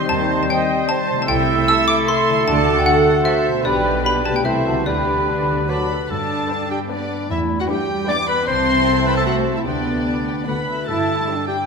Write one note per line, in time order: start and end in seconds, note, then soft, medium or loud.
0.00 1.21 D#3 medium
0.00 1.25 G3 medium
0.00 1.28 G3 medium
0.00 2.41 G3 soft
0.00 1.25 C4 medium
0.00 1.26 D#4 soft
0.00 1.27 C5 medium
0.00 1.25 D#5 soft
0.05 2.46 C5 medium
0.09 0.43 D#2 medium
0.09 0.43 D#3 medium
0.09 1.27 C4 medium
0.09 0.48 C5 medium
0.09 0.40 A5 medium
0.09 0.48 A5 medium
0.43 0.50 A5 medium
0.49 0.57 C5 medium
0.49 0.88 D#5 medium
0.49 0.88 G5 medium
0.49 0.87 G5 medium
0.89 1.28 C5 medium
0.89 0.97 C5 medium
0.89 1.19 A5 medium
0.89 1.28 A5 medium
1.10 2.39 C3 medium
1.14 2.33 A3 soft
1.19 2.43 E4 medium
1.19 1.29 A5 medium
1.24 3.48 A4 medium
1.24 2.46 E5 medium
1.28 1.61 C2 medium
1.28 1.61 C3 medium
1.28 3.48 A3 medium
1.28 3.61 A3 medium
1.28 2.44 E4 medium
1.28 2.32 E4 medium
1.28 2.05 E5 medium
1.28 2.47 E5 medium
1.28 1.67 G5 medium
1.28 1.65 G5 medium
1.68 1.76 A4 medium
1.68 1.88 E6 medium
1.68 1.86 E6 loud
1.88 2.06 D6 loud
1.88 1.96 D6 medium
2.07 2.15 A4 medium
2.07 2.46 E5 medium
2.07 2.46 C6 medium
2.07 2.45 C6 medium
2.29 3.57 D3 medium
2.34 3.60 A3 soft
2.38 3.62 F#4 medium
2.43 2.79 D2 medium
2.43 2.79 D3 medium
2.43 3.48 D4 medium
2.43 3.60 D5 medium
2.47 3.63 F#4 medium
2.47 2.85 D5 medium
2.47 3.41 F#5 medium
2.47 2.86 A5 medium
2.47 2.77 A5 medium
2.79 2.86 G5 medium
2.86 2.95 F#4 medium
2.86 3.24 A4 medium
2.86 3.23 F#5 medium
2.86 3.26 F#5 medium
3.25 3.34 F#4 medium
3.25 3.64 C5 medium
3.25 3.62 E5 medium
3.25 3.64 E5 medium
3.48 4.38 B2 medium
3.52 4.40 B3 soft
3.56 4.42 G4 medium
3.61 4.41 B1 medium
3.61 4.40 B2 medium
3.61 4.02 G3 medium
3.61 4.45 B4 medium
3.61 4.01 B4 medium
3.61 4.44 D5 soft
3.61 4.04 D5 medium
3.61 4.02 D5 medium
3.65 4.46 B3 medium
3.65 4.02 D4 medium
3.65 4.02 G4 medium
3.65 4.44 G4 medium
3.65 4.02 B5 medium
4.04 4.47 G3 medium
4.04 4.47 D4 medium
4.04 4.44 G4 medium
4.04 4.47 B4 medium
4.04 4.12 B5 medium
4.04 4.44 B5 soft
4.04 4.24 B5 medium
4.24 4.79 C3 soft
4.24 4.34 A5 medium
4.32 4.81 A3 soft
4.32 4.45 G5 medium
4.36 4.83 E4 soft
4.36 4.45 G5 medium
4.41 4.86 C2 medium
4.41 4.86 C3 medium
4.41 4.88 E3 medium
4.41 4.86 C5 soft
4.41 4.83 E5 medium
4.41 4.85 A5 soft
4.45 4.86 A3 medium
4.45 4.86 C4 medium
4.45 4.66 E4 soft
4.45 4.86 E4 medium
4.45 4.86 A4 medium
4.45 4.87 C5 medium
4.45 4.85 E5 medium
4.65 5.50 D3 soft
4.65 4.86 F#4 soft
4.73 5.55 D4 soft
4.78 5.66 G4 soft
4.86 5.89 D2 soft
4.86 5.89 D3 medium
4.86 5.71 G3 soft
4.86 5.69 B3 soft
4.86 5.68 D4 medium
4.86 5.23 G4 soft
4.86 5.69 G4 soft
4.86 5.71 B4 medium
4.86 5.88 B4 soft
4.86 5.87 D5 medium
4.86 5.86 D5 medium
4.86 5.67 B5 soft
5.28 5.66 D4 soft
5.52 6.03 D3 soft
5.56 6.30 D4 soft
5.61 6.07 F#4 soft
5.65 5.89 A3 soft
5.65 5.89 F#4 soft
5.65 6.10 A4 soft
5.69 5.90 F#3 soft
5.69 5.77 B4 medium
5.69 6.12 B4 medium
5.69 5.90 D5 soft
5.69 5.89 A5 soft
5.69 6.07 B5 medium
5.90 5.98 A4 soft
6.09 6.41 G2 medium
6.09 7.31 G2 soft
6.09 6.86 D4 medium
6.09 6.70 A4 medium
6.09 6.69 A5 medium
6.31 7.48 D4 soft
6.50 6.80 D4 medium
6.50 7.68 G4 soft
6.50 6.80 B4 medium
6.50 6.80 D5 medium
6.50 6.80 G5 medium
6.70 6.79 G4 medium
6.70 7.09 B4 soft
6.70 6.78 G5 medium
6.90 7.30 B3 medium
6.90 7.19 D4 medium
6.90 7.32 D4 medium
6.90 7.19 B4 medium
6.90 7.19 D5 medium
6.90 8.07 D5 soft
6.90 7.30 D5 medium
6.90 7.19 G5 medium
7.10 7.87 B4 soft
7.29 7.61 E2 medium
7.29 8.50 E2 medium
7.29 7.68 A3 medium
7.29 7.60 E4 medium
7.29 7.39 E5 medium
7.49 8.50 D4 soft
7.60 7.65 F#4 medium
7.60 7.64 F#5 medium
7.68 8.08 G3 medium
7.68 7.98 D4 medium
7.68 8.50 G4 soft
7.68 8.08 G4 medium
7.68 7.98 B4 medium
7.68 7.98 E5 medium
7.68 7.98 G5 medium
7.68 8.08 G5 medium
7.88 8.27 B4 medium
8.07 8.48 B3 medium
8.07 8.37 D4 medium
8.07 8.38 B4 medium
8.07 8.50 D5 medium
8.07 8.17 D5 medium
8.07 8.37 E5 medium
8.07 8.37 G5 medium
8.07 8.29 D6 medium
8.28 8.47 B4 medium
8.28 8.50 B4 medium
8.28 8.48 B5 medium
8.47 9.62 C2 medium
8.47 9.68 C3 medium
8.47 9.62 C4 medium
8.47 9.25 C4 medium
8.47 9.08 C5 loud
8.47 9.62 C5 medium
8.47 9.62 E5 medium
8.47 9.62 A5 medium
8.47 9.06 C6 medium
8.68 9.68 E4 soft
8.88 9.68 A4 soft
9.06 9.17 B4 medium
9.06 9.46 C5 soft
9.06 9.17 B5 medium
9.16 9.22 A4 medium
9.16 9.26 A5 medium
9.26 9.66 A3 medium
9.26 9.58 F#4 medium
9.26 9.34 F#5 medium
9.47 9.68 C5 soft
9.56 9.66 E4 medium
9.56 9.60 E5 soft
9.66 10.46 D2 soft
9.66 10.47 D3 medium
9.66 10.47 B3 medium
9.66 10.66 B3 medium
9.66 10.46 D4 medium
9.66 10.47 G4 soft
9.66 10.02 D5 soft
9.66 10.46 D5 medium
9.66 10.02 G5 medium
9.87 11.08 D4 soft
10.06 10.49 G4 soft
10.06 10.14 A5 medium
10.27 10.49 B4 soft
10.27 10.35 G5 soft
10.46 10.56 D2 soft
10.46 10.90 D3 soft
10.46 10.67 A3 soft
10.46 10.55 F#4 soft
10.46 10.89 B4 medium
10.46 10.56 F#5 soft
10.46 10.87 B5 soft
10.68 10.90 F#4 soft
10.68 10.90 A4 soft
10.68 10.88 E5 soft
10.88 11.20 G2 medium
10.88 11.66 G2 soft
10.88 11.25 E4 medium
10.88 11.47 A4 medium
10.88 11.47 A5 medium
11.09 11.66 D4 soft
11.27 11.58 G3 soft
11.27 11.66 D4 soft
11.27 11.58 G4 soft
11.27 11.66 G4 soft
11.27 11.58 D5 soft
11.27 11.58 B5 soft
11.47 11.57 G4 medium
11.47 11.66 B4 soft
11.47 11.66 G5 medium